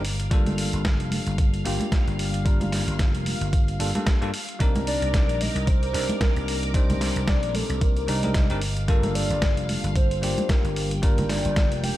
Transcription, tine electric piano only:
0.31 G3 A#3 D4 F4 A4
1.65 G3 A#3 D4 F4 G4
2.45 G3 A#3 D4 F4 A#4
3.79 G3 A#3 D4 F4 A4
3.95 G3 A#3 D4 F4 A4
4.21 G3 A#3 D4 F4 A4
4.59 G3 C4 D4 D#4 A#4
5.93 G3 C4 D4 D#4 A#4
6.74 G3 C4 D4 D#4 C5
8.08 G3 C4 D4 D#4 A#4
8.23 G3 C4 D4 D#4 A#4
8.50 G3 C4 D4 D#4 A#4
8.88 G3 A#3 D4 F4 A4
10.22 G3 A#3 D4 F4 G4
11.02 G3 A#3 D4 F4 A#4

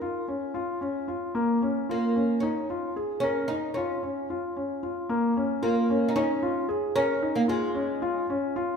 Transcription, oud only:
Already playing: A#4
1.91 A#3
2.40 C#4
3.20 C#4
3.48 D#4
3.74 C#4
5.63 A#3
6.08 D#4
6.16 C#4
6.96 C#4
7.36 A#3
7.49 G#3

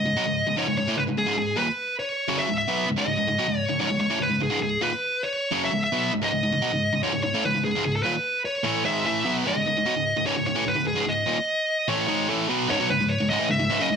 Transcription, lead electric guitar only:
Already playing: D#5
0.58 C#5
0.78 C#5
0.97 B4
1.18 G#4
1.39 G#4
1.58 B4
1.99 C#5
2.39 E5
2.58 E5
2.98 D#5
3.59 C#5
3.81 C#5
4.01 C#5
4.22 B4
4.43 G#4
4.63 G#4
4.83 B4
5.23 C#5
5.64 E5
5.84 E5
6.24 D#5
7.03 C#5
7.23 C#5
7.45 B4
7.65 G#4
7.85 G#4
7.96 A4
8.03 B4
8.45 C#5
8.85 E5
9.06 E5
9.47 D#5
10.26 C#5
10.46 C#5
10.68 B4
10.87 G#4
11.09 D#5
11.89 C#5
12.70 C#5
12.90 B4
13.09 C#5
13.30 D#5
13.51 E5
13.82 D#5
13.93 C#5

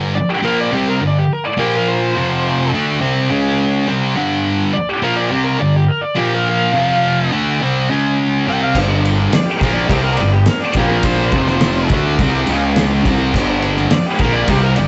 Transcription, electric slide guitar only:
0.15 D5
0.29 G4
0.45 A#4
0.60 D5
0.74 G4
0.88 A#4
1.07 D5
1.19 G4
1.33 A#4
1.45 D5
1.59 G4
1.77 A#4
1.88 C5
4.73 D5
4.89 G4
5.03 A#4
5.16 D5
5.29 G4
5.44 A#4
5.60 D5
5.76 G4
5.88 A#4
6.01 D5
6.16 G4
6.35 A#4
6.49 F5
8.50 G5
8.63 F5
9.34 D5
9.46 G4
9.57 A#4
9.74 D5
9.87 G4
10.04 A#4
10.17 D5
10.33 G4
10.48 A#4
10.60 D5
10.76 G4
10.88 A#4
11.04 C5
13.92 D5
14.06 G4
14.20 A#4
14.33 D5
14.48 G4
14.63 A#4
14.76 D5

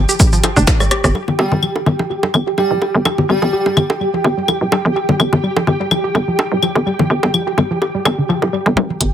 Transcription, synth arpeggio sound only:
0.09 G4
0.20 G3
0.33 F3
0.44 F3
0.57 D4
0.67 A3
0.80 G3
0.91 G4
1.04 G4
1.15 G3
1.28 F3
1.39 G4
1.52 G3
1.63 F3
1.76 G4
1.86 G3
1.99 F3
2.10 G4
2.23 G3
2.34 F3
2.47 G4
2.58 G3
2.71 F3
2.82 G4
2.95 G3
3.05 F3
3.18 G4
3.29 G3
3.42 F3
3.53 G4
3.66 G3
3.77 F3
3.90 G4
4.01 G3
4.14 F3
4.24 G4
4.37 G3
4.48 F3
4.61 G4
4.72 G3
4.85 F3
4.96 G4
5.09 G3
5.20 F3
5.33 G4
5.43 G3
5.56 F3
5.67 G4
5.80 G3
5.91 F3
6.04 G4
6.15 G3
6.28 F3
6.39 G4
6.52 G3
6.63 F3
6.76 G4
6.86 G3
6.99 F3
7.10 G4
7.23 G3
7.34 F3
7.47 G4
7.58 G3
7.71 F3
7.82 G4
7.95 G3
8.05 G3
8.18 D3
8.29 F3
8.42 G4
8.53 G3
8.66 G3
8.77 G3
8.90 F3
9.01 G4

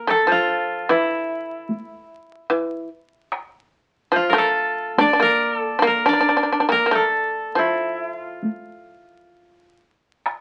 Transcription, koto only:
Already playing: A#4
0.10 A4
0.32 F4
0.90 E4
4.16 F4
4.30 A#4
4.38 A4
5.01 D5
5.22 A#4
5.56 A4
5.87 A#4
6.09 D5
6.72 A#4
6.95 A4
7.59 E4
8.11 F4

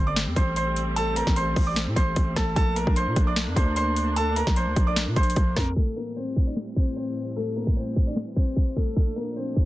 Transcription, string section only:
Already playing: G3 A3 C4
2.56 A#3 D4
5.76 A2 E3 G3 C4
8.96 A#2 F3 A3 D4

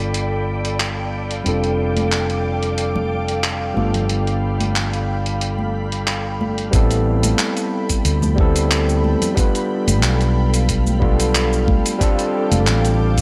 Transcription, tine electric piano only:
Already playing: G3 B3 D4 F4 A4
1.44 G3 C4 D4 F4
1.48 A4
3.74 G3 B3 D4 F4
3.79 A4
6.71 G3 B3 C4 E4
6.75 A4
8.36 G3 B3 C4 E4
8.41 A4
9.35 G3 B3 D4 F4
9.39 B4
10.99 G3 B3 D4 F4
11.04 A4
11.99 G3 C4 D4 F4
12.03 A4

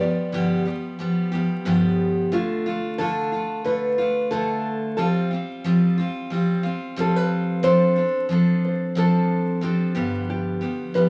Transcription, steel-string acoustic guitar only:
0.00 F3 G3 B3 G4
0.32 G2 D3 F3 G3 B3 G4
0.65 F3 G3 B3 G4
0.99 F3 G3 B3 G4
1.32 F3 G3 B3 G4
1.65 G2 D3 F3 G3 B3 G4
2.32 D3 A3 D4 F4
2.66 A3 D4 F4
2.98 D3 A3 D4 F4
3.32 D4 F4
3.36 A3
3.65 D3 A3 D4 F4
3.98 A3 D4 F4
4.31 D3 A3 D4 F4
4.97 F3 G3 C4 F4
5.31 G3 C4 F4
5.64 F3 G3 C4 F4
5.98 G3 C4 F4
6.30 F3 G3 C4 F4
6.63 G3 C4 F4
6.96 F3 G3 C4 F4
7.63 F3 C4 D4 A4
7.96 C4 D4 A4
8.29 F3 C4 D4 A4
8.95 F3 C4 D4 A4
9.61 F3 C4 D4 A4
9.95 G2 D3 F3 G3 B3 G4
10.61 F3 G3 B3 G4
10.94 F3 G3 B3 G4

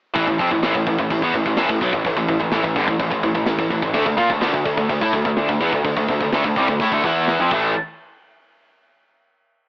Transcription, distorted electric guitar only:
0.15 A2 E3
0.28 A2 E3
0.40 F3 C4
0.52 A2 E3
0.64 A2 E3
0.76 A2 E3
0.87 A2 E3
0.99 A2 E3
1.11 A2 E3
1.23 E3 B3
1.35 A2 E3
1.46 A2 E3
1.58 A2 E3
1.69 A2 E3
1.82 B2 F#3
1.94 A2 E3
2.06 A2 E3
2.17 A2 E3
2.29 A2 E3
2.39 A2 E3
2.52 A2 E3
2.64 A2 E3
2.76 G2 D3
2.88 A2 E3
2.99 A2 E3
3.10 A2 E3
3.23 A2 E3
3.35 A2 E3
3.47 A2 E3
3.59 A2 E3
3.72 A2 E3
3.83 A2 E3
3.94 D3 A3
4.06 D3 A3
4.17 A#3 F4
4.29 D3 A3
4.41 D3 A3
4.53 D3 A3
4.66 D3 A3
4.78 D3 A3
4.90 D3 A3
5.02 A3 E4
5.14 D3 A3
5.26 D3 A3
5.36 D3 A3
5.49 D3 A3
5.61 E3 B3
5.74 D3 A3
5.85 D3 A3
5.97 D3 A3
6.10 D3 A3
6.22 D3 A3
6.33 D3 A3
6.45 D3 A3
6.57 C3 G3
6.68 D3 A3
6.81 A3 E4
6.93 D3 A3
7.05 E3 B3 E4
7.40 F3 C4
7.52 A2 E3 A3

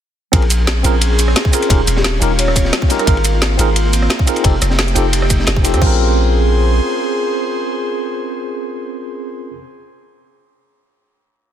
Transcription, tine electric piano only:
0.32 C4 C#4 F4 G#4 A#4
0.83 C4 C#4 F4 G#4 A#4
1.52 C4 C#4 F4 G#4 A#4
1.69 C#4 D#4 F4 G4 A#4
2.20 C#4 D#4 F4 G4 A#4
2.89 C#4 D#4 F4 G4 A#4
3.06 C4 D#4 F4 G#4 A#4
3.57 C4 D#4 F4 G#4 A#4
4.26 C4 D#4 F4 G#4 A#4
4.43 C4 D#4 F4 G4 A4
4.95 C4 D#4 F4 G4 A4
5.63 C4 D#4 F4 G4 A4
5.77 C4 C#4
5.82 F4 G#4
5.86 A#4

